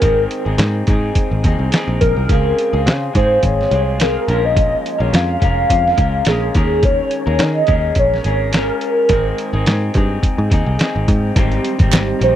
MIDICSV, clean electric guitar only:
0, 0, Header, 1, 2, 480
1, 0, Start_track
1, 0, Key_signature, -4, "major"
1, 0, Tempo, 566572
1, 25, Time_signature, 4, 2, 24, 8
1, 10469, End_track
2, 0, Start_track
2, 0, Title_t, "Clean electric guitar"
2, 0, Program_c, 0, 27
2, 18, Note_on_c, 0, 44, 70
2, 24, Note_on_c, 0, 51, 66
2, 28, Note_on_c, 0, 56, 70
2, 33, Note_on_c, 0, 60, 76
2, 35, Note_on_c, 0, 63, 77
2, 39, Note_on_c, 0, 68, 80
2, 373, Note_off_c, 0, 68, 0
2, 383, Note_on_c, 0, 68, 56
2, 388, Note_off_c, 0, 63, 0
2, 393, Note_off_c, 0, 44, 0
2, 395, Note_off_c, 0, 60, 0
2, 396, Note_off_c, 0, 51, 0
2, 398, Note_off_c, 0, 56, 0
2, 398, Note_on_c, 0, 63, 55
2, 405, Note_on_c, 0, 60, 57
2, 418, Note_on_c, 0, 56, 52
2, 727, Note_off_c, 0, 56, 0
2, 737, Note_off_c, 0, 60, 0
2, 737, Note_on_c, 0, 56, 57
2, 738, Note_off_c, 0, 68, 0
2, 745, Note_off_c, 0, 63, 0
2, 747, Note_on_c, 0, 60, 62
2, 759, Note_on_c, 0, 63, 64
2, 766, Note_on_c, 0, 68, 72
2, 1210, Note_off_c, 0, 56, 0
2, 1213, Note_on_c, 0, 56, 50
2, 1224, Note_off_c, 0, 63, 0
2, 1227, Note_off_c, 0, 60, 0
2, 1230, Note_on_c, 0, 60, 59
2, 1234, Note_on_c, 0, 63, 59
2, 1242, Note_off_c, 0, 68, 0
2, 1245, Note_on_c, 0, 68, 54
2, 1443, Note_off_c, 0, 56, 0
2, 1453, Note_off_c, 0, 60, 0
2, 1453, Note_on_c, 0, 56, 57
2, 1463, Note_on_c, 0, 60, 64
2, 1467, Note_off_c, 0, 63, 0
2, 1475, Note_off_c, 0, 68, 0
2, 1477, Note_on_c, 0, 63, 71
2, 1487, Note_on_c, 0, 68, 70
2, 1940, Note_on_c, 0, 49, 64
2, 1941, Note_off_c, 0, 56, 0
2, 1944, Note_off_c, 0, 60, 0
2, 1944, Note_on_c, 0, 56, 73
2, 1951, Note_off_c, 0, 63, 0
2, 1956, Note_on_c, 0, 60, 69
2, 1961, Note_on_c, 0, 65, 70
2, 1963, Note_off_c, 0, 68, 0
2, 1967, Note_on_c, 0, 68, 75
2, 2299, Note_off_c, 0, 68, 0
2, 2309, Note_on_c, 0, 68, 57
2, 2315, Note_off_c, 0, 49, 0
2, 2317, Note_off_c, 0, 56, 0
2, 2318, Note_off_c, 0, 65, 0
2, 2323, Note_off_c, 0, 60, 0
2, 2329, Note_on_c, 0, 65, 48
2, 2347, Note_on_c, 0, 60, 46
2, 2653, Note_on_c, 0, 56, 51
2, 2661, Note_off_c, 0, 60, 0
2, 2661, Note_off_c, 0, 68, 0
2, 2671, Note_off_c, 0, 65, 0
2, 2672, Note_on_c, 0, 60, 50
2, 2681, Note_on_c, 0, 65, 61
2, 2693, Note_on_c, 0, 68, 59
2, 3138, Note_off_c, 0, 56, 0
2, 3141, Note_on_c, 0, 56, 47
2, 3149, Note_off_c, 0, 60, 0
2, 3158, Note_on_c, 0, 60, 49
2, 3159, Note_off_c, 0, 65, 0
2, 3162, Note_on_c, 0, 65, 56
2, 3172, Note_off_c, 0, 68, 0
2, 3175, Note_on_c, 0, 68, 51
2, 3366, Note_off_c, 0, 56, 0
2, 3376, Note_on_c, 0, 56, 64
2, 3378, Note_off_c, 0, 60, 0
2, 3388, Note_on_c, 0, 60, 67
2, 3392, Note_off_c, 0, 65, 0
2, 3401, Note_off_c, 0, 68, 0
2, 3402, Note_on_c, 0, 65, 60
2, 3413, Note_on_c, 0, 68, 66
2, 3621, Note_off_c, 0, 56, 0
2, 3625, Note_on_c, 0, 46, 72
2, 3627, Note_off_c, 0, 60, 0
2, 3628, Note_on_c, 0, 53, 73
2, 3634, Note_off_c, 0, 65, 0
2, 3634, Note_on_c, 0, 56, 71
2, 3639, Note_off_c, 0, 68, 0
2, 3639, Note_on_c, 0, 61, 76
2, 3644, Note_on_c, 0, 65, 77
2, 3644, Note_on_c, 0, 70, 91
2, 4219, Note_off_c, 0, 70, 0
2, 4222, Note_off_c, 0, 65, 0
2, 4222, Note_on_c, 0, 70, 56
2, 4233, Note_on_c, 0, 65, 45
2, 4238, Note_off_c, 0, 46, 0
2, 4239, Note_off_c, 0, 53, 0
2, 4243, Note_off_c, 0, 61, 0
2, 4246, Note_on_c, 0, 61, 45
2, 4248, Note_off_c, 0, 56, 0
2, 4254, Note_on_c, 0, 56, 45
2, 4563, Note_off_c, 0, 56, 0
2, 4573, Note_on_c, 0, 56, 52
2, 4578, Note_off_c, 0, 70, 0
2, 4580, Note_off_c, 0, 61, 0
2, 4583, Note_off_c, 0, 65, 0
2, 4590, Note_on_c, 0, 61, 57
2, 4601, Note_on_c, 0, 65, 52
2, 4614, Note_on_c, 0, 70, 59
2, 5051, Note_off_c, 0, 56, 0
2, 5054, Note_on_c, 0, 56, 60
2, 5063, Note_off_c, 0, 61, 0
2, 5063, Note_off_c, 0, 65, 0
2, 5067, Note_on_c, 0, 61, 60
2, 5074, Note_on_c, 0, 65, 50
2, 5080, Note_off_c, 0, 70, 0
2, 5086, Note_on_c, 0, 70, 58
2, 5288, Note_off_c, 0, 56, 0
2, 5297, Note_off_c, 0, 61, 0
2, 5298, Note_on_c, 0, 56, 61
2, 5305, Note_off_c, 0, 65, 0
2, 5307, Note_on_c, 0, 61, 54
2, 5316, Note_off_c, 0, 70, 0
2, 5316, Note_on_c, 0, 65, 64
2, 5329, Note_on_c, 0, 70, 62
2, 5542, Note_off_c, 0, 56, 0
2, 5547, Note_off_c, 0, 61, 0
2, 5547, Note_on_c, 0, 51, 71
2, 5551, Note_off_c, 0, 65, 0
2, 5556, Note_on_c, 0, 56, 67
2, 5557, Note_off_c, 0, 70, 0
2, 5565, Note_on_c, 0, 61, 70
2, 5567, Note_on_c, 0, 70, 87
2, 5568, Note_on_c, 0, 68, 77
2, 6139, Note_off_c, 0, 70, 0
2, 6149, Note_on_c, 0, 70, 60
2, 6167, Note_off_c, 0, 61, 0
2, 6167, Note_off_c, 0, 68, 0
2, 6170, Note_on_c, 0, 68, 49
2, 6174, Note_off_c, 0, 56, 0
2, 6182, Note_on_c, 0, 61, 46
2, 6208, Note_off_c, 0, 51, 0
2, 6495, Note_off_c, 0, 61, 0
2, 6497, Note_on_c, 0, 56, 51
2, 6501, Note_off_c, 0, 70, 0
2, 6505, Note_on_c, 0, 61, 56
2, 6507, Note_off_c, 0, 68, 0
2, 6517, Note_on_c, 0, 68, 58
2, 6524, Note_on_c, 0, 70, 57
2, 6973, Note_off_c, 0, 56, 0
2, 6977, Note_on_c, 0, 56, 44
2, 6983, Note_off_c, 0, 61, 0
2, 6993, Note_on_c, 0, 61, 50
2, 6995, Note_off_c, 0, 70, 0
2, 6996, Note_off_c, 0, 68, 0
2, 6999, Note_on_c, 0, 68, 50
2, 7011, Note_on_c, 0, 70, 53
2, 7206, Note_off_c, 0, 56, 0
2, 7216, Note_on_c, 0, 56, 59
2, 7217, Note_off_c, 0, 61, 0
2, 7227, Note_on_c, 0, 61, 65
2, 7228, Note_off_c, 0, 68, 0
2, 7238, Note_off_c, 0, 70, 0
2, 7239, Note_on_c, 0, 68, 56
2, 7247, Note_on_c, 0, 70, 68
2, 7702, Note_on_c, 0, 44, 66
2, 7706, Note_off_c, 0, 61, 0
2, 7707, Note_off_c, 0, 56, 0
2, 7709, Note_on_c, 0, 51, 75
2, 7710, Note_on_c, 0, 56, 71
2, 7716, Note_off_c, 0, 70, 0
2, 7717, Note_off_c, 0, 68, 0
2, 7720, Note_on_c, 0, 60, 74
2, 7721, Note_on_c, 0, 63, 77
2, 7724, Note_on_c, 0, 68, 83
2, 8062, Note_off_c, 0, 68, 0
2, 8070, Note_off_c, 0, 63, 0
2, 8072, Note_on_c, 0, 68, 62
2, 8076, Note_off_c, 0, 44, 0
2, 8079, Note_off_c, 0, 51, 0
2, 8080, Note_off_c, 0, 56, 0
2, 8080, Note_on_c, 0, 63, 56
2, 8084, Note_off_c, 0, 60, 0
2, 8096, Note_on_c, 0, 60, 49
2, 8103, Note_on_c, 0, 56, 49
2, 8412, Note_off_c, 0, 56, 0
2, 8422, Note_off_c, 0, 68, 0
2, 8422, Note_on_c, 0, 56, 57
2, 8425, Note_off_c, 0, 60, 0
2, 8427, Note_off_c, 0, 63, 0
2, 8435, Note_on_c, 0, 60, 62
2, 8447, Note_on_c, 0, 63, 55
2, 8451, Note_on_c, 0, 68, 63
2, 8892, Note_off_c, 0, 56, 0
2, 8896, Note_on_c, 0, 56, 50
2, 8905, Note_off_c, 0, 60, 0
2, 8909, Note_on_c, 0, 60, 57
2, 8914, Note_off_c, 0, 63, 0
2, 8917, Note_on_c, 0, 63, 67
2, 8922, Note_off_c, 0, 68, 0
2, 8926, Note_on_c, 0, 68, 62
2, 9127, Note_off_c, 0, 56, 0
2, 9137, Note_on_c, 0, 56, 59
2, 9138, Note_off_c, 0, 60, 0
2, 9146, Note_off_c, 0, 63, 0
2, 9148, Note_on_c, 0, 60, 68
2, 9155, Note_off_c, 0, 68, 0
2, 9156, Note_on_c, 0, 63, 67
2, 9172, Note_on_c, 0, 68, 72
2, 9623, Note_on_c, 0, 44, 81
2, 9626, Note_on_c, 0, 51, 90
2, 9635, Note_off_c, 0, 56, 0
2, 9635, Note_off_c, 0, 60, 0
2, 9638, Note_on_c, 0, 55, 85
2, 9639, Note_on_c, 0, 60, 104
2, 9646, Note_off_c, 0, 63, 0
2, 9650, Note_on_c, 0, 63, 94
2, 9664, Note_off_c, 0, 68, 0
2, 9974, Note_off_c, 0, 63, 0
2, 9984, Note_on_c, 0, 63, 65
2, 9992, Note_off_c, 0, 60, 0
2, 9994, Note_off_c, 0, 44, 0
2, 9996, Note_off_c, 0, 51, 0
2, 10002, Note_off_c, 0, 55, 0
2, 10002, Note_on_c, 0, 60, 66
2, 10016, Note_on_c, 0, 55, 57
2, 10330, Note_off_c, 0, 55, 0
2, 10330, Note_on_c, 0, 51, 57
2, 10337, Note_off_c, 0, 63, 0
2, 10340, Note_on_c, 0, 55, 57
2, 10346, Note_off_c, 0, 60, 0
2, 10358, Note_on_c, 0, 60, 56
2, 10366, Note_on_c, 0, 63, 64
2, 10469, Note_off_c, 0, 51, 0
2, 10469, Note_off_c, 0, 55, 0
2, 10469, Note_off_c, 0, 60, 0
2, 10469, Note_off_c, 0, 63, 0
2, 10469, End_track
0, 0, End_of_file